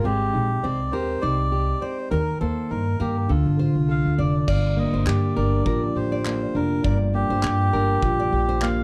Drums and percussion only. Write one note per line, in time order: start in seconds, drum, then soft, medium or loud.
4.48 kick medium
4.48 crash medium
5.07 clap medium
5.66 kick medium
6.25 clap medium
6.85 kick loud
7.43 clap loud
8.03 kick medium
8.62 clap loud